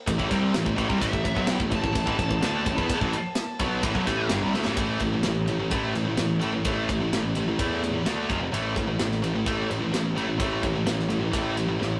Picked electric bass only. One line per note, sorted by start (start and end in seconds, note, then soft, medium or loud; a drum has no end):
0.07 0.18 A1 medium
0.19 0.30 A1 medium
0.32 0.53 C2 loud
0.56 0.66 A1 medium
0.66 0.77 A1 medium
0.78 0.89 A1 medium
0.90 1.01 C2 medium
1.02 1.13 A1 loud
1.14 1.25 A1 medium
1.26 1.36 A1 medium
1.37 1.59 B1 medium
1.60 1.71 A1 medium
1.72 1.83 A1 medium
1.84 1.95 A1 medium
1.96 2.06 A1 medium
2.07 2.18 A1 loud
2.19 2.30 A1 medium
2.31 2.42 A1 medium
2.44 2.65 D2 loud
2.66 2.77 A1 medium
2.78 2.89 E2 medium
2.90 muted picked electric bass stroke soft
3.02 3.12 A1 medium
3.60 3.82 B1 medium
3.84 3.94 A1 medium
3.95 4.06 B1 medium
4.07 4.29 A1 loud
4.31 4.41 G1 medium
4.42 4.53 C2 medium
4.55 4.65 D2 medium
4.67 4.77 A1 medium
4.77 4.97 A1 medium
5.01 5.21 A1 medium
5.26 5.66 A1 medium
5.72 5.91 A1 medium
5.96 6.15 A1 medium
6.19 6.59 A1 medium
6.66 7.05 A1 medium
7.13 7.53 A1 medium
7.59 7.99 E2 medium
8.07 8.27 D2 medium
8.30 8.50 F1 medium
8.55 8.74 A1 medium
8.76 8.96 A1 medium
9.00 9.40 A1 medium
9.46 9.66 A1 medium
9.71 9.90 A1 medium
9.94 10.34 A1 medium
10.40 10.80 A1 medium
10.86 11.27 A1 medium
11.34 11.74 A1 medium
11.81 12.00 A1 medium